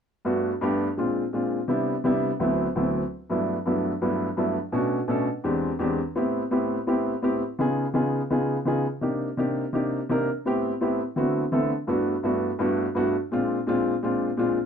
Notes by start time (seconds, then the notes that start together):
0.25 G2 A3 B3 D4 F#4
0.61 G2 A3 B3 D4 G4
0.97 A#2 G#3 C4 D4 F4
1.33 A#2 G#3 C4 D4 F4
1.68 C3 G3 B3 D4 E4
2.04 C3 G3 B3 D4 E4
2.40 D2 F#3 A3 B3 C4 E4
2.75 D2 F#3 A3 B3 C4 E4
3.30 G2 F#3 A3 B3 D4 E4
3.66 G2 F#3 A3 B3 D4 E4
4.01 G2 F#3 A3 B3 D4 E4
4.37 G2 F#3 A3 B3 D4 E4
4.72 B2 A3 C#4 D4 F#4
5.08 B2 A3 C#4 D4 A4
5.44 E2 G#3 C4 D4 G4
5.79 E2 G#3 C4 D4 G4
6.15 A2 B3 C4 E4 G4
6.51 A2 B3 C4 E4 G4
6.87 A2 B3 C4 E4 G4
7.22 A2 B3 C4 E4 G4
7.59 C#3 B3 D#4 F4 G#4
7.94 C#3 B3 D#4 F4 G#4
8.30 C#3 B3 D#4 F4 G#4
8.65 C#3 B3 D#4 F4 G#4
9.01 C3 A#3 D4 D#4 G4
9.37 C3 A#3 D4 D#4 G4
9.73 C3 A#3 D4 D#4 G4
10.09 C3 A#3 D4 D#4 A#4
10.45 A2 B3 C4 E4 G4
10.81 A2 B3 C4 E4 G4
11.16 D3 A3 B3 C4 E4 F#4
11.52 D3 A3 B3 C4 E4 A4
11.87 G2 A3 B3 D4 E4 F#4
12.23 G2 A3 B3 D4 E4 F#4
12.59 G2 A3 B3 D4 E4 F#4
12.95 G2 A3 B3 D4 E4 F#4
13.31 A#2 G#3 C4 D4 F4
13.67 A#2 G#3 C4 D4 F4
14.02 A#2 G#3 C4 D4 F4
14.37 A#2 G#3 C4 D4 F4